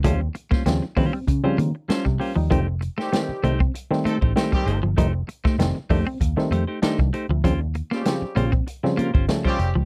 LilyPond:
<<
  \new Staff \with { instrumentName = "Clean electric guitar" } { \time 4/4 \key f \major \tempo 4 = 97 <g des' f' c''>16 r8 <g des' f' c''>16 r8 <g des' f' c''>16 r8 <g des' f' c''>16 r8 <g des' f' c''>16 r16 <g des' f' c''>16 r16 | <a ees' g' c''>16 r8 <a ees' g' c''>16 r8 <a ees' g' c''>16 r8. <a ees' g' c''>16 <a ees' g' c''>16 <a ees' g' c''>16 r16 <a ees' g' c''>16 r16 | <a ees' g' c''>16 r8 <a ees' g' c''>16 r8 <a ees' g' c''>16 r8. <a ees' g' c''>16 <a ees' g' c''>16 <a ees' g' c''>16 r16 <a ees' g' c''>16 r16 | <des' f' g' c''>16 r8 <des' f' g' c''>16 r8 <des' f' g' c''>16 r8. <des' f' g' c''>16 <des' f' g' c''>16 r16 <des' f' g' c''>16 r8 | }
  \new Staff \with { instrumentName = "Horn section" } { \time 4/4 \key f \major r1 | r8. <ees g c' g'>8. r4 <ees a c' a'>16 r8 <ees g c' g'>8 r16 | r1 | r8. <des g c' g'>8. r4 <g bes f' bes'>16 r8 <des g c' g'>8 r16 | }
  \new Staff \with { instrumentName = "Clean electric guitar" } { \time 4/4 \key f \major f16 r8 bes16 r8 bes16 c'16 r8 bes16 r8 g16 r16 f16 | f16 r8 a16 r8 a16 c'16 r8 a16 r8 g16 r16 f16 | f16 r8 a16 r8 a16 c'16 r8 a16 r8 g16 r16 f16 | f16 r8 bes16 r8 bes16 c'16 r8 bes16 r8 g16 r16 f16 | }
  \new Staff \with { instrumentName = "Clav" } { \time 4/4 \key f \major r2. <des' a'>8 <bes g'>16 <g ees'>16~ | <g ees'>16 r2. r8. | r1 | r1 | }
  \new Staff \with { instrumentName = "Clav" } { \clef bass \time 4/4 \key f \major <des f g a>16 <g c'>16 r8 <des f g c'>16 r16 <des f g c'>16 <g c'>16 r16 <des f g c'>8 r4 r16 | <ees g a c'>16 <a c'>16 r8 <ees g a c'>16 r16 <ees g a c'>16 <a c'>16 r16 <ees g a c'>8 r16 <ees g a c'>8 r16 <a c'>16 | <ees g a ees'>16 <a c'>16 r8 <ees g a c'>16 r16 <ees g a d'>16 <a c'>16 r16 <ees g a c'>8 r16 <ees g a d'>8 r16 <a c'>16 | <des f g c'>16 <g a>16 r8 <des f g c'>16 r16 <des f g c'>16 <g c'>16 r16 <des f g c'>8 r16 <des f g a>8 r16 <g c'>16 | }
  \new Staff \with { instrumentName = "Picked electric bass" } { \clef bass \time 4/4 \key f \major ees,8 r8 ees,16 r16 ees16 r16 des16 r16 ees16 r8 c16 r16 ees,16 | f,,8. r8. c,8 r8. a,,16 r8 g,,16 g,,16 | f,,8 r8 f,,16 r16 f,16 r16 ees,16 r16 f,16 r8 c,16 r16 d,16 | ees,8. r8. bes,,8 r8. g,,16 r8 f,,16 des,16 | }
  \new DrumStaff \with { instrumentName = "Drums" } \drummode { \time 4/4 <hh bd>8 hh16 <bd sn>16 <hh sn>8 <hho bd>8 <hh bd>8 hh8 <hh sn>16 bd16 hho8 | <hh bd>8 hh16 sn16 <hh sn>8 hh16 bd16 hh16 sn16 hh16 bd16 <hh sn>16 bd16 hh8 | <hh bd>8 hh16 <bd sn>16 <hh sn>8 <hho bd>8 <hh bd>16 sn16 hh8 <hh sn>16 bd16 hh8 | <hh bd>8 hh16 sn16 <hh sn>8 hh16 bd16 hh16 sn16 hh16 bd16 <hh sn>16 bd16 hh8 | }
>>